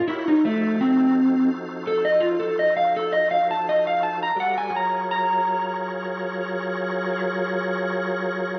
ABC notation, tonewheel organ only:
X:1
M:12/8
L:1/8
Q:3/8=56
K:Fphr
V:1 name="Tonewheel organ"
[=EG=GBd] [F,_E_G=Ac]8- [F,EGAc]3 | [=G,_G=A_c=d] [_G,F_AB_d]8- [G,FABd]3 |]